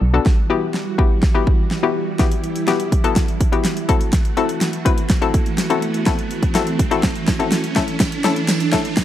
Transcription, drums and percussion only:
0.26 kick, snare
0.74 snare
0.99 kick
1.23 kick, snare
1.47 kick
1.71 snare
2.19 kick, snare, closed hi-hat
2.32 closed hi-hat
2.44 closed hi-hat
2.56 closed hi-hat
2.68 snare, closed hi-hat
2.80 closed hi-hat
2.92 kick, closed hi-hat
3.04 closed hi-hat
3.16 kick, snare, closed hi-hat
3.28 closed hi-hat
3.41 kick, closed hi-hat
3.53 closed hi-hat
3.65 snare, closed hi-hat
3.77 closed hi-hat
3.89 kick, closed hi-hat
4.01 closed hi-hat
4.13 kick, snare, closed hi-hat
4.25 closed hi-hat
4.37 closed hi-hat
4.49 closed hi-hat
4.61 snare, closed hi-hat
4.73 closed hi-hat
4.86 kick, closed hi-hat
4.98 closed hi-hat
5.10 kick, snare, closed hi-hat
5.22 closed hi-hat
5.34 kick, closed hi-hat
5.46 closed hi-hat
5.58 snare, closed hi-hat
5.70 closed hi-hat
5.82 closed hi-hat
5.94 closed hi-hat
6.06 kick, snare, closed hi-hat
6.19 closed hi-hat
6.31 closed hi-hat
6.43 kick, closed hi-hat
6.55 snare, closed hi-hat
6.67 closed hi-hat
6.79 kick, closed hi-hat
6.91 closed hi-hat
7.03 kick, snare, closed hi-hat
7.16 closed hi-hat
7.28 kick, snare, closed hi-hat
7.40 closed hi-hat
7.52 snare, closed hi-hat
7.64 closed hi-hat
7.76 kick, snare, closed hi-hat
7.88 closed hi-hat
8.00 kick, snare, closed hi-hat, tambourine
8.12 closed hi-hat
8.24 snare, closed hi-hat, tambourine
8.36 closed hi-hat
8.48 snare, closed hi-hat, tambourine
8.60 closed hi-hat
8.73 kick, snare, closed hi-hat, tambourine
8.85 closed hi-hat
8.97 kick, snare, closed hi-hat

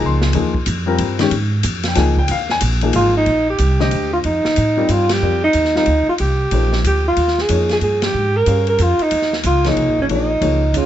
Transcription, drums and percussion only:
0.22 snare
0.33 ride
0.54 kick
0.66 hi-hat pedal, ride
0.98 ride
1.19 snare, ride
1.31 ride
1.63 hi-hat pedal, ride
1.83 snare, ride
1.95 snare, ride
2.17 kick
2.28 ride
2.49 snare
2.61 hi-hat pedal, ride
2.81 ride
2.93 ride
3.26 ride
3.58 hi-hat pedal, ride
3.80 snare
3.91 ride
4.24 ride
4.45 snare
4.56 hi-hat pedal, ride
4.89 hi-hat pedal, ride
5.09 snare, ride
5.53 hi-hat pedal, ride
5.65 snare
5.76 snare
5.86 ride
6.18 ride
6.51 ride
6.73 snare
6.84 hi-hat pedal, ride
7.17 ride
7.28 snare
7.38 snare
7.49 hi-hat pedal, ride
7.69 snare, ride
7.81 ride
8.02 snare, ride
8.46 hi-hat pedal, ride
8.67 ride
8.79 hi-hat pedal, ride
8.99 ride
9.11 ride
9.22 snare
9.33 snare
9.43 hi-hat pedal, ride
9.64 snare, ride
9.77 ride
10.09 ride
10.42 ride
10.74 hi-hat pedal, ride

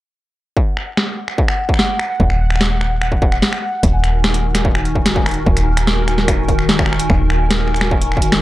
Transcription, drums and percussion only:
0.57 kick
0.77 finger snap
0.97 finger snap, snare
1.28 finger snap
1.38 kick
1.48 finger snap
1.69 kick
1.74 finger snap
1.79 snare
1.99 finger snap
2.20 kick
2.30 finger snap
2.50 finger snap
2.56 finger snap
2.61 finger snap, snare
2.66 finger snap
2.81 finger snap
3.02 finger snap
3.12 kick
3.22 kick
3.32 finger snap
3.42 snare
3.53 finger snap
3.83 kick, closed hi-hat
4.04 finger snap, closed hi-hat
4.24 finger snap, snare
4.34 closed hi-hat
4.55 finger snap, snare, closed hi-hat
4.65 kick
4.75 finger snap
4.85 closed hi-hat
4.95 kick
5.06 finger snap, snare, closed hi-hat
5.16 kick
5.26 finger snap, closed hi-hat
5.29 closed hi-hat
5.31 closed hi-hat
5.34 closed hi-hat
5.46 kick
5.57 finger snap, closed hi-hat
5.77 finger snap, closed hi-hat
5.87 snare
6.08 finger snap, closed hi-hat
6.18 snare
6.28 finger snap, kick, closed hi-hat
6.48 kick, closed hi-hat
6.59 finger snap
6.69 snare
6.79 finger snap, kick
6.86 finger snap
6.93 finger snap
6.99 closed hi-hat
7.10 finger snap, kick
7.30 finger snap
7.51 snare, closed hi-hat
7.61 finger snap
7.68 finger snap
7.74 finger snap, closed hi-hat
7.81 finger snap, snare
7.91 kick
8.02 closed hi-hat
8.12 finger snap
8.17 kick
8.22 closed hi-hat
8.32 finger snap, snare

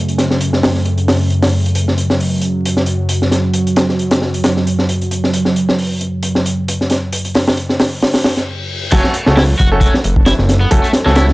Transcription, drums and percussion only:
0.09 closed hi-hat
0.18 snare, closed hi-hat
0.31 snare
0.41 closed hi-hat
0.53 snare
0.63 snare, open hi-hat
0.75 snare
0.85 closed hi-hat
0.98 closed hi-hat
1.08 snare, open hi-hat
1.30 closed hi-hat
1.42 snare, open hi-hat
1.66 closed hi-hat
1.75 closed hi-hat
1.88 snare
1.98 closed hi-hat
2.10 snare
2.20 open hi-hat
2.41 closed hi-hat
2.65 closed hi-hat
2.77 snare
2.86 closed hi-hat
3.09 closed hi-hat
3.22 snare
3.31 snare, closed hi-hat
3.54 closed hi-hat
3.67 closed hi-hat
3.76 snare, closed hi-hat
3.89 snare
3.99 closed hi-hat
4.11 snare, closed hi-hat
4.21 snare
4.34 closed hi-hat
4.44 snare, closed hi-hat
4.56 snare
4.67 closed hi-hat
4.79 snare
4.89 closed hi-hat
5.01 closed hi-hat
5.11 closed hi-hat
5.24 snare
5.33 closed hi-hat
5.45 snare
5.56 closed hi-hat
5.69 snare
5.79 open hi-hat
6.01 closed hi-hat
6.23 closed hi-hat
6.35 snare
6.46 closed hi-hat
6.68 closed hi-hat
6.81 snare
6.90 snare, closed hi-hat
7.12 closed hi-hat
7.25 closed hi-hat
7.35 snare, open hi-hat
7.47 snare, open hi-hat
7.57 closed hi-hat
7.69 snare
7.80 snare, open hi-hat
8.02 snare, open hi-hat
8.14 snare, open hi-hat
8.24 snare, open hi-hat
8.36 snare, closed hi-hat
8.91 kick, closed hi-hat, crash
9.04 snare
9.14 closed hi-hat
9.26 snare
9.37 snare, open hi-hat
9.59 kick, closed hi-hat
9.81 kick, closed hi-hat
9.94 snare
10.04 closed hi-hat
10.16 kick
10.26 snare, closed hi-hat
10.38 snare
10.49 snare, closed hi-hat
10.71 kick, closed hi-hat
10.84 closed hi-hat
10.93 snare, closed hi-hat
11.06 snare
11.16 snare, closed hi-hat
11.28 snare

